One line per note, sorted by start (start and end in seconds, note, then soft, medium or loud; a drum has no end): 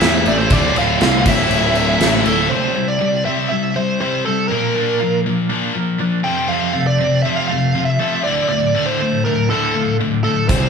0.00 0.24 E2 loud
0.00 0.48 A2 loud
0.00 0.49 E3 medium
0.00 0.49 A3 medium
0.00 0.50 C4 medium
0.00 0.50 E4 loud
0.00 0.50 A4 loud
0.00 0.27 E5 loud
0.00 snare loud
0.00 crash medium
0.26 0.49 A1 medium
0.26 0.38 D5 medium
0.26 crash medium
0.38 0.52 C5 medium
0.50 0.74 D1 loud
0.50 1.24 D2 medium
0.50 1.24 A2 medium
0.50 1.24 D3 loud
0.50 1.25 A3 loud
0.50 1.25 F4 loud
0.50 0.77 D5 loud
0.50 kick loud
0.50 crash medium
0.76 0.99 D1 medium
0.76 1.23 F5 loud
0.76 crash medium
1.01 1.24 C2 medium
1.01 snare loud
1.01 crash medium
1.25 1.49 D1 medium
1.25 2.23 D2 medium
1.25 2.24 A2 medium
1.25 2.25 D3 medium
1.25 2.25 A3 loud
1.25 2.24 E4 loud
1.25 2.23 E5 medium
1.25 kick medium
1.25 crash loud
1.50 1.96 D1 loud
1.50 crash medium
1.75 crash medium
2.01 2.23 A1 loud
2.01 snare loud
2.01 crash medium
2.25 2.49 D1 medium
2.25 2.50 D2 medium
2.25 2.50 A2 medium
2.25 2.50 D3 medium
2.25 2.49 A3 medium
2.25 2.49 E4 medium
2.25 2.49 A4 medium
2.25 crash medium
2.49 2.74 C3 medium
2.49 3.76 C3 medium
2.49 2.74 G3 medium
2.49 2.74 C4 loud
2.49 2.88 C5 medium
2.75 2.98 C3 medium
2.75 2.98 G3 medium
2.75 3.50 E4 medium
2.88 3.23 D5 medium
3.00 3.23 C3 medium
3.00 3.23 G3 medium
3.00 4.26 G4 medium
3.25 3.49 C3 medium
3.25 3.49 G3 medium
3.25 3.50 C4 medium
3.25 4.25 C4 medium
3.25 3.48 E5 medium
3.49 3.73 C3 medium
3.49 3.73 G3 medium
3.49 4.00 E4 medium
3.49 3.75 E5 medium
3.76 3.98 C3 medium
3.76 3.98 G3 medium
3.76 4.00 C5 medium
3.76 4.51 C5 medium
4.00 4.24 C3 medium
4.00 4.25 G3 medium
4.00 4.25 C4 medium
4.00 4.51 E4 medium
4.00 4.25 C5 medium
4.26 4.48 C3 medium
4.26 4.48 G3 medium
4.26 4.51 C4 medium
4.26 4.48 A4 medium
4.48 4.74 A#2 medium
4.48 5.76 A#2 medium
4.48 4.74 F3 medium
4.48 5.20 A#4 medium
4.52 4.75 A#3 medium
4.75 4.99 A#2 medium
4.75 4.99 F3 medium
4.75 4.99 A#3 medium
4.75 5.48 D4 medium
5.00 5.23 A#2 medium
5.00 5.23 F3 medium
5.00 6.99 F4 medium
5.25 5.48 A#2 medium
5.25 5.48 F3 medium
5.25 6.25 A#3 medium
5.50 5.73 A#2 medium
5.50 5.73 F3 medium
5.50 5.74 A#3 medium
5.50 5.99 D4 medium
5.74 5.97 A#2 medium
5.74 5.98 F3 medium
5.74 6.25 A#4 medium
5.99 6.22 A#2 medium
5.99 6.22 F3 medium
5.99 6.25 D4 medium
6.24 6.48 F2 medium
6.24 6.48 C3 medium
6.24 6.49 F3 medium
6.24 6.48 G5 medium
6.48 7.75 F2 medium
6.48 6.73 F2 medium
6.48 6.73 C3 medium
6.48 6.74 F3 medium
6.48 6.86 F5 loud
6.74 6.97 F2 medium
6.74 6.97 C3 medium
6.74 7.48 A3 medium
6.87 7.22 D5 medium
6.99 7.23 F2 medium
6.99 7.23 C3 medium
6.99 8.25 C4 medium
7.23 7.49 F2 medium
7.23 7.49 C3 medium
7.23 8.25 F3 medium
7.23 7.49 F3 loud
7.23 7.36 E5 medium
7.36 7.46 F5 medium
7.48 7.73 F2 medium
7.48 7.73 C3 medium
7.48 7.98 A3 medium
7.48 7.84 F5 medium
7.75 7.98 F2 medium
7.75 7.98 C3 medium
7.75 8.25 F4 medium
7.85 8.21 E5 medium
7.99 8.23 F2 medium
7.99 8.24 C3 medium
7.99 8.24 F3 medium
7.99 8.25 A3 medium
8.24 8.48 D2 medium
8.24 8.49 D2 medium
8.24 8.49 A2 medium
8.24 8.49 D3 medium
8.24 8.48 D5 medium
8.49 9.74 D2 medium
8.49 8.73 D2 medium
8.49 8.73 A2 medium
8.49 8.88 D5 medium
8.74 8.98 D2 medium
8.74 8.99 A2 medium
8.74 9.49 D3 medium
8.74 8.99 D3 medium
8.86 9.24 C5 medium
9.00 9.23 D2 medium
9.00 9.23 A2 medium
9.00 10.25 A3 medium
9.25 9.48 D2 medium
9.25 10.23 A2 medium
9.25 9.48 A2 medium
9.25 9.49 A#4 medium
9.50 9.74 D2 medium
9.50 9.74 A2 medium
9.50 9.98 D3 medium
9.50 9.75 D3 medium
9.50 9.96 A4 medium
9.74 9.97 D2 medium
9.74 9.98 A2 medium
9.74 10.49 F4 medium
9.99 10.23 D2 medium
9.99 10.23 A2 medium
9.99 10.49 D3 medium
10.24 10.47 D2 medium
10.24 10.47 A2 medium
10.24 10.49 A2 medium
10.24 10.48 A4 medium
10.49 10.69 C2 medium
10.49 10.69 C3 medium
10.49 10.69 G3 medium
10.49 10.69 C4 medium
10.49 10.69 C5 loud
10.49 kick loud
10.49 closed hi-hat medium